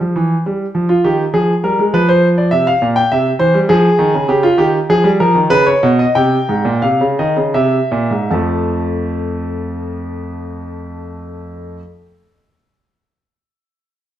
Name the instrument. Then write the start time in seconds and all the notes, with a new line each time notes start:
grand piano
Already playing: C5
0.01 F3
0.16 E3
0.46 G3
0.75 F3
0.89 F4
1.04 D#3 G4
1.33 F3 G#4
1.64 G3 A#4
1.79 G#3
1.93 F3 B4
2.09 C5
2.38 D5
2.51 C3 E5
2.67 F5
2.82 A#2
2.96 G5
3.12 C3 E5
3.39 E3 C5
3.54 G3
3.69 F3 G#4
3.99 D#3
4.14 C#3
4.28 C#3 G4
4.43 F4
4.58 D#3 G4
4.89 F3 G#4
5.04 G3
5.20 F3 A#4
5.35 D#3
5.50 C#3 B4
5.67 C#5
5.83 B2
5.99 D#5
6.15 C3 G5
6.49 G#2
6.65 A#2
6.82 C3 F5
7.01 C#3
7.19 D#3 D#5
7.37 C#3
7.54 C3 E5
7.92 A#2
8.10 G#2
8.30 F2 F3 A3 A5